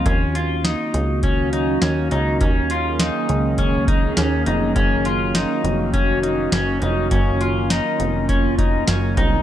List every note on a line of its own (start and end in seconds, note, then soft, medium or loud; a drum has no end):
0.00 9.42 D#3 medium
0.00 9.42 A#3 medium
0.05 0.76 D#2 medium
0.05 9.42 F#3 medium
0.05 4.72 C#4 medium
0.05 0.35 C#4 medium
0.05 2.38 F#4 medium
0.05 kick medium
0.05 closed hi-hat medium
0.35 0.64 F4 medium
0.35 closed hi-hat medium
0.64 1.23 D#4 medium
0.64 snare loud
0.64 closed hi-hat medium
0.94 1.78 C#2 medium
0.94 closed hi-hat medium
1.23 1.52 C#4 medium
1.23 kick medium
1.23 closed hi-hat soft
1.53 1.82 D#4 medium
1.53 closed hi-hat soft
1.82 2.10 D#2 medium
1.82 2.11 C#4 medium
1.82 snare loud
1.82 closed hi-hat medium
2.11 2.40 C#2 medium
2.11 2.41 D#4 medium
2.11 closed hi-hat soft
2.40 3.11 D#2 medium
2.40 2.70 C#4 medium
2.40 4.74 G#4 medium
2.40 kick loud
2.40 closed hi-hat medium
2.70 3.00 F4 medium
2.70 closed hi-hat medium
3.00 3.58 D#4 medium
3.00 snare loud
3.00 closed hi-hat medium
3.29 4.13 C#2 medium
3.29 closed hi-hat medium
3.58 3.88 C#4 medium
3.58 kick medium
3.58 closed hi-hat medium
3.88 4.17 D#4 medium
3.88 kick medium
3.88 closed hi-hat soft
4.17 4.45 D#2 medium
4.17 4.46 C#4 medium
4.17 snare loud
4.17 closed hi-hat medium
4.46 4.75 F1 medium
4.46 4.75 D#4 medium
4.46 closed hi-hat medium
4.75 5.46 F#1 medium
4.75 9.42 C#4 medium
4.75 5.05 C#4 medium
4.75 7.09 F#4 medium
4.75 kick loud
4.75 closed hi-hat medium
5.05 5.35 F4 medium
5.05 closed hi-hat soft
5.35 5.93 D#4 medium
5.35 snare medium
5.35 closed hi-hat medium
5.64 6.48 F1 medium
5.64 closed hi-hat medium
5.93 6.22 C#4 medium
5.93 kick medium
5.93 closed hi-hat soft
6.23 6.52 D#4 medium
6.23 closed hi-hat soft
6.52 6.80 F#1 loud
6.52 6.81 C#4 medium
6.52 snare loud
6.52 closed hi-hat medium
6.82 7.10 F1 medium
6.82 7.11 D#4 medium
6.82 closed hi-hat medium
7.11 7.81 F#1 loud
7.11 7.41 C#4 medium
7.11 9.42 F4 medium
7.11 kick medium
7.11 closed hi-hat medium
7.41 7.70 F4 medium
7.41 closed hi-hat soft
7.70 8.29 D#4 medium
7.70 snare loud
7.70 closed hi-hat medium
8.00 8.84 F1 medium
8.00 closed hi-hat medium
8.29 8.58 C#4 medium
8.29 kick medium
8.29 closed hi-hat medium
8.58 8.87 D#4 medium
8.58 kick medium
8.58 closed hi-hat soft
8.88 9.16 F#1 medium
8.88 9.17 C#4 medium
8.88 snare loud
8.88 closed hi-hat medium
9.17 9.42 C2 medium
9.17 9.42 D#4 medium
9.17 kick medium
9.17 closed hi-hat soft